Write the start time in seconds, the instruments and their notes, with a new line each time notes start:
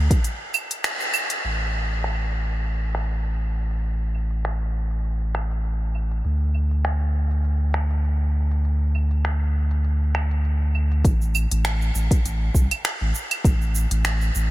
0.11 kick, closed hi-hat, shaker
0.24 closed hi-hat, shaker
0.54 claves, shaker
0.71 closed hi-hat, shaker
0.84 finger snap, closed hi-hat, shaker
1.00 shaker
1.14 claves, shaker
1.30 closed hi-hat, shaker
1.44 sub bass A1, closed hi-hat
1.74 claves
1.90 closed hi-hat
2.04 finger snap
2.51 closed hi-hat
2.65 closed hi-hat
2.95 finger snap
3.11 closed hi-hat
3.24 closed hi-hat
3.71 closed hi-hat
3.85 closed hi-hat
4.14 claves
4.31 closed hi-hat
4.45 finger snap, closed hi-hat
4.91 closed hi-hat
5.05 closed hi-hat
5.35 finger snap, claves
5.51 closed hi-hat
5.65 closed hi-hat
5.95 claves
6.11 closed hi-hat
6.25 sub bass D2, closed hi-hat
6.54 claves
6.71 closed hi-hat
6.85 finger snap, closed hi-hat
7.31 closed hi-hat
7.45 closed hi-hat
7.74 finger snap
7.91 closed hi-hat
8.05 closed hi-hat
8.51 closed hi-hat
8.65 closed hi-hat
8.95 claves
9.11 closed hi-hat
9.25 finger snap, closed hi-hat
9.71 closed hi-hat
9.84 closed hi-hat
10.15 finger snap, claves
10.31 closed hi-hat
10.45 closed hi-hat
10.75 claves
10.92 closed hi-hat
11.05 sub bass A1, kick, closed hi-hat, shaker
11.22 shaker
11.35 claves, shaker
11.51 sub bass A1, closed hi-hat, shaker
11.65 finger snap, closed hi-hat, shaker
11.82 shaker
11.95 sub bass A1, shaker
12.11 kick, closed hi-hat, shaker
12.25 sub bass A1, closed hi-hat, shaker
12.54 sub bass C2, kick, shaker
12.71 closed hi-hat, claves, shaker
12.85 finger snap, closed hi-hat, shaker
13.01 sub bass A1
13.15 shaker
13.31 closed hi-hat, claves, shaker
13.44 sub bass A1, kick, closed hi-hat, shaker
13.61 shaker
13.75 shaker
13.91 sub bass A1, closed hi-hat, shaker
14.05 finger snap, closed hi-hat, shaker
14.21 shaker
14.35 sub bass A1, shaker